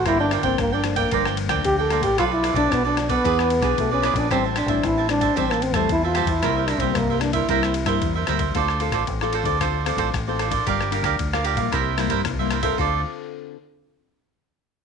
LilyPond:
<<
  \new Staff \with { instrumentName = "Cavaquinho" } { \time 4/4 \key c \mixolydian \tempo 4 = 113 <f' bes' d'' g''>16 <bes' d'' g''>16 <f' bes' d'' g''>16 <bes' d'' g''>8 <bes' d'' g''>16 r16 <bes' d'' g''>16 <f' bes' d'' g''>16 <bes' d'' g''>16 r16 <bes' d'' g''>8 <bes' d'' g''>16 <f' bes' d'' g''>16 <bes' d'' g''>16 | <f' a' b' d''>16 <a' b' d''>16 <f' a' b' d''>16 <a' b' d''>8 <a' b' d''>16 r16 <a' b' d''>16 <e' gis' b' d''>16 <gis' b' d''>16 r16 <gis' b' d''>8 <gis' b' d''>16 <e' gis' b' d''>16 <gis' b' d''>16 | <g' c'' e'' a''>16 <c'' e'' a''>16 <g' c'' e'' a''>16 <c'' e'' a''>8 <c'' e'' a''>16 r16 <c'' e'' a''>16 <g' c'' e'' a''>16 <c'' e'' a''>16 r16 <c'' e'' a''>8 <c'' e'' a''>16 <g' c'' e'' a''>16 <c'' e'' a''>16 | <e' bes' c'' e''>16 <bes' c'' e''>16 <e' bes' c'' e''>16 <bes' c'' e''>8 <bes' c'' e''>16 r16 <bes' c'' e''>16 <e' bes' c'' e''>16 <bes' c'' e''>16 r16 <bes' c'' e''>8 <bes' c'' e''>16 <e' bes' c'' e''>16 <bes' c'' e''>16 |
\key d \minor <f' a' c'' d''>8 <f' a' c'' d''>16 <f' a' c'' d''>16 r16 <a' c'' d''>16 <f' a' c'' d''>16 <a' c'' d''>16 <f' a' c'' d''>8 <f' a' c'' d''>16 <f' a' c'' d''>16 r16 <a' c'' d''>16 <f' a' c'' d''>16 <a' c'' d''>16 | <g' bes' d'' f''>8 <g' bes' d'' f''>16 <g' bes' d'' f''>16 r16 <bes' d'' f''>16 <g' bes' d'' f''>16 <bes' d'' f''>16 <e' bes' c'' e''>8 <e' bes' c'' e''>16 <e' bes' c'' e''>16 r16 <bes' c'' e''>16 <e' bes' c'' e''>16 <bes' c'' e''>16 | <f' a' c'' d''>8 r2. r8 | }
  \new Staff \with { instrumentName = "Trombone" } { \time 4/4 \key c \mixolydian e'16 d'8 c'16 bes16 d'8 bes8. r8 g'16 a'8 g'16 | f'16 e'8 d'16 b16 d'8 b4~ b16 a16 des'8 d'16 | c'8 d'8 e'8 d'8 c'16 bes16 c'16 a16 e'16 f'8 e'16~ | e'8 d'16 c'16 bes8 d'16 e'4.~ e'16 r8 |
\key d \minor r1 | r1 | r1 | }
  \new Staff \with { instrumentName = "Nylon-string guitar" } { \time 4/4 \key c \mixolydian << { g,4 d4 g,4 d4 | b,4 b,4 e4 b,4 | a,4 e4 a,4 e4 | c4 g,4 c4 g,4 |
\key d \minor d4 a,4 d4 a,4 | g4 d4 c4 g,4 | <d c' f' a'>8 r2. r8 | } \\ { <f bes d'>8 r16 <f bes d'>8. <f bes d'>8 <f bes d'>8. <f bes d'>8. <f bes d'>16 r16 | <f a d'>8. <f a d'>8. <f a d'>16 r16 <b d' gis'>8. <b d' gis'>8. <b d' gis'>8 | <g c' e'>8 r16 <g c' e'>8. <g c' e'>8 <g c' e'>8 r16 <g c' e'>8. <g c' e'>16 r16 | <g bes e'>8. <g bes e'>8. <g bes e'>8 <g bes e'>8. <g bes e'>8. <g bes e'>16 r16 |
<c' f' a'>16 r16 <c' f' a'>8. <c' f' a'>8 <c' f' a'>16 <c' f' a'>16 r16 <c' f' a'>8 r16 <c' f' a'>8 <d' f' bes'>16~ | <d' f' bes'>8 <d' f' bes'>8. <d' f' bes'>8 <g bes e'>8. <g bes e'>8. <g bes e'>8 <c' f' a'>16~ | <c' f' a'>8 r2. r8 | } >> }
  \new Staff \with { instrumentName = "Fingered electric bass" } { \clef bass \time 4/4 \key c \mixolydian g,,8. g,,16 g,,4 g,,8. d,16 d,8. a,,16 | b,,8. b,,16 b,,4 e,8. b,,16 b,,8. bes,,16 | a,,8. a,,16 a,,4 a,,8. e,16 e,8. e,16 | c,8. c,16 c,4 c,8. g,16 e,8 d,8 |
\key d \minor d,8. a,,16 a,,8. d,4 a,,16 a,,4 | g,,8. d,16 d,8. bes,,16 c,8. g,16 c,4 | d,8 r2. r8 | }
  \new DrumStaff \with { instrumentName = "Drums" } \drummode { \time 4/4 <bd cymr ss>8 <cymr ss>16 <bd cymr>16 <bd cymr ss>8 <cymr ss>16 <bd cymr>16 <bd cymr>16 ss16 cymr16 <bd cymr ss>16 <bd cymr>8 <cymr ss>16 <bd cymr>16 | <bd cymr ss>8 <cymr ss>16 <bd cymr>16 <bd cymr ss>8 <cymr ss>16 <bd cymr>16 <bd cymr>16 ss16 cymr16 <bd cymr ss>16 <bd cymr>8 <cymr ss>16 <bd cymr>16 | <bd cymr ss>8 <cymr ss>16 <bd cymr>16 <bd cymr ss>8 <cymr ss>16 <bd cymr>16 <bd cymr>16 ss16 cymr16 <bd cymr ss>16 <bd cymr>8 <cymr ss>16 <bd cymr>16 | <bd cymr ss>8 <cymr ss>16 <bd cymr>16 <bd cymr ss>8 <cymr ss>16 <bd cymr>16 <bd cymr>16 ss16 cymr16 <bd cymr ss>16 <bd cymr>8 <cymr ss>16 <bd cymr>16 |
<bd cymr>16 ss16 cymr16 <bd cymr ss>16 <bd cymr>16 ss16 cymr16 <bd cymr>16 <bd cymr ss>8 <cymr ss>16 <bd cymr>16 <bd cymr ss>8 <cymr ss>16 <bd cymr>16 | <bd cymr>16 ss16 cymr16 <bd cymr ss>16 <bd cymr>16 ss16 cymr16 <bd cymr>16 <bd cymr ss>8 <cymr ss>16 <bd cymr>16 <bd cymr ss>8 <cymr ss>16 <bd cymr>16 | bd4 r4 r4 r4 | }
>>